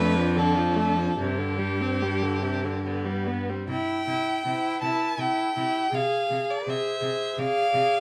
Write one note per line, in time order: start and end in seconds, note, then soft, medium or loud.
0.00 1.15 F2 medium
0.00 0.17 A3 medium
0.00 1.91 D4 medium
0.00 0.40 B4 loud
0.16 0.38 F3 medium
0.36 0.58 D3 medium
0.36 1.22 A4 medium
0.56 0.78 F3 medium
0.76 0.98 A3 medium
0.97 1.17 F3 medium
1.17 3.43 G2 medium
1.17 1.40 C3 medium
1.17 3.28 G4 medium
1.39 1.60 D3 medium
1.59 1.83 G3 medium
1.81 2.04 C4 medium
2.03 2.25 G3 medium
2.03 2.88 D4 medium
2.24 2.44 D3 medium
2.43 2.66 C3 medium
2.65 2.85 D3 soft
2.85 3.07 D3 medium
2.85 3.51 B3 medium
3.05 3.29 G3 soft
3.27 3.51 B3 soft
3.50 3.69 G3 soft
3.50 3.69 C4 medium
3.68 3.76 C3 medium
3.68 4.07 E4 medium
3.68 4.79 G5 medium
4.08 4.16 C3 soft
4.08 4.45 E4 soft
4.46 4.54 C3 medium
4.46 4.82 E4 medium
4.46 4.84 C5 medium
4.82 4.90 C3 medium
4.82 5.18 E4 soft
4.82 5.19 B4 medium
4.82 5.22 A5 medium
5.18 5.26 C3 medium
5.18 5.55 E4 medium
5.18 5.59 A4 medium
5.18 5.96 G5 medium
5.57 5.65 C3 soft
5.57 5.92 E4 soft
5.57 5.92 G4 medium
5.92 6.01 C3 medium
5.92 6.28 G#4 medium
5.92 6.67 G#4 medium
5.92 6.52 F5 medium
6.29 6.39 C3 soft
6.29 6.65 G#4 soft
6.50 6.71 D5 medium
6.66 6.75 C3 medium
6.66 7.00 G#4 medium
6.66 7.41 C5 medium
6.70 7.41 E5 medium
7.01 7.10 C3 medium
7.01 7.36 G#4 medium
7.37 7.46 C3 medium
7.37 7.72 G#4 medium
7.37 8.00 D5 medium
7.37 8.00 F5 medium
7.74 7.82 C3 medium
7.74 8.00 G#4 medium